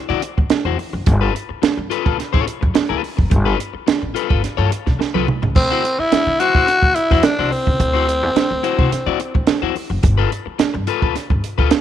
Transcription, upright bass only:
0.10 D3
0.38 D2
0.50 muted upright bass stroke
0.65 E2
0.93 F#1
1.07 G1
1.50 muted upright bass stroke
1.62 muted upright bass stroke
1.77 G2
2.06 D2
2.34 A1
2.62 F2
2.75 muted upright bass stroke
2.90 D2
3.19 F#1
3.31 G1
3.74 muted upright bass stroke
3.88 muted upright bass stroke
4.02 A1
4.30 G1
4.44 muted upright bass stroke
4.58 G2
4.87 B1
5.00 muted upright bass stroke
5.14 C2
5.42 C#2
5.56 D2
5.98 muted upright bass stroke
6.12 muted upright bass stroke
6.26 D3
6.54 A2
6.82 D2
7.11 E2
7.24 muted upright bass stroke
7.39 C2
7.67 C#2
7.80 D2
8.23 E2
8.36 muted upright bass stroke
8.51 D2
8.79 C3
8.92 muted upright bass stroke
9.06 D3
9.35 D2
9.48 muted upright bass stroke
9.62 E2
9.90 F#1
10.04 G1
10.46 muted upright bass stroke
10.59 muted upright bass stroke
10.74 G2
11.02 D2
11.30 G1
11.59 D2
11.71 muted upright bass stroke

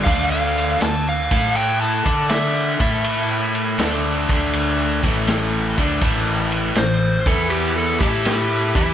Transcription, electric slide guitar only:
0.04 F5
0.31 F5
0.83 A5
1.09 F5
1.56 G5
1.81 A5
2.29 E5
6.78 C5
7.27 A4
7.51 G4
7.76 A4
7.99 G4

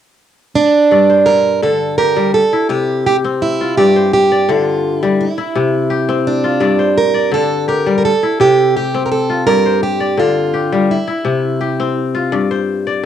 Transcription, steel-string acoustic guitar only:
0.55 D4
1.26 A#4
1.63 A4
1.98 A#4
2.34 A4
2.70 G4
3.06 G4
3.42 E4
3.78 G4
4.14 G4
4.49 F4
5.00 E4
5.21 E4
6.27 D4
6.97 A#4
7.34 A4
7.69 A#4
7.98 A#4
8.05 A4
8.41 G4
8.77 G4
9.06 A#4
9.12 A4
9.47 A#4
9.83 G4
10.19 F4
10.91 E4

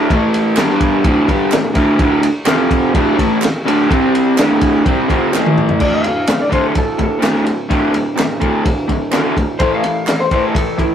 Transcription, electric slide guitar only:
5.81 D5
5.94 F5
6.41 D5
6.53 C5
6.66 A4
6.78 A4
7.03 A4
9.59 C5
9.75 F5
10.20 C5
10.33 C5
10.47 A4
10.57 A4
10.79 E4

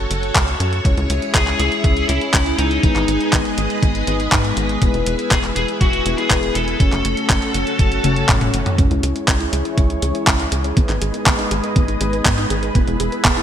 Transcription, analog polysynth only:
0.85 G#3 C#4 E4 C#5
2.09 G#3 C#4 E4 C#5
2.83 G#3 B3 D#4 B4
4.07 G#3 B3 D#4 B4
4.82 G#3 B3 E4 B4
6.06 G#3 B3 E4 B4
6.80 A3 C#4 F#4 C#5
8.04 A3 C#4 F#4 C#5
8.78 G#3 C#4 E4 C#5
10.02 G#3 C#4 E4 C#5
10.77 G#3 B3 D#4 B4
12.01 G#3 B3 D#4 B4
12.75 G#3 B3 E4 B4

